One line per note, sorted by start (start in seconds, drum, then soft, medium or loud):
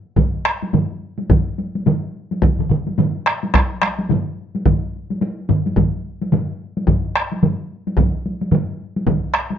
0.16 taiko medium
0.16 taiko low-mid medium
0.16 taiko mid medium
0.16 taiko high medium
0.45 taiko rim medium
0.62 taiko high soft
0.73 taiko low-mid medium
0.73 taiko mid medium
0.73 taiko high medium
1.19 taiko high soft
1.29 taiko loud
1.29 taiko low-mid medium
1.29 taiko mid medium
1.29 taiko high medium
1.58 taiko high soft
1.75 taiko high soft
1.86 taiko low-mid medium
1.86 taiko mid medium
1.86 taiko high medium
2.31 taiko high soft
2.42 taiko loud
2.42 taiko low-mid medium
2.42 taiko mid medium
2.42 taiko high medium
2.59 taiko low-mid medium
2.59 taiko mid medium
2.69 taiko low-mid medium
2.69 taiko mid medium
2.87 taiko high soft
2.98 taiko low-mid medium
2.98 taiko mid medium
2.98 taiko high medium
3.26 taiko rim medium
3.43 taiko high soft
3.54 taiko rim medium
3.54 taiko loud
3.54 taiko high medium
3.82 taiko rim medium
3.82 taiko high soft
3.99 taiko high soft
4.09 taiko low-mid medium
4.09 taiko mid medium
4.09 taiko high medium
4.55 taiko high soft
4.66 taiko loud
4.66 taiko low-mid medium
4.66 taiko mid medium
4.66 taiko high medium
5.10 taiko high soft
5.21 taiko high medium
5.49 taiko low-mid medium
5.49 taiko mid medium
5.66 taiko high medium
5.76 taiko medium
5.76 taiko low-mid medium
5.76 taiko mid medium
5.76 taiko high medium
6.22 taiko high medium
6.32 taiko low-mid medium
6.32 taiko mid medium
6.32 taiko high medium
6.77 taiko high soft
6.87 taiko medium
6.87 taiko low-mid loud
6.87 taiko mid medium
6.87 taiko high medium
7.16 taiko rim medium
7.32 taiko high soft
7.43 taiko low-mid medium
7.43 taiko mid medium
7.43 taiko high medium
7.87 taiko high medium
7.97 taiko loud
7.97 taiko low-mid medium
7.97 taiko mid medium
7.97 taiko high medium
8.26 taiko high soft
8.41 taiko high soft
8.52 taiko low-mid medium
8.52 taiko mid medium
8.52 taiko high medium
8.96 taiko high medium
9.07 taiko medium
9.07 taiko low-mid medium
9.07 taiko mid medium
9.07 taiko high medium
9.34 taiko rim medium
9.50 taiko high soft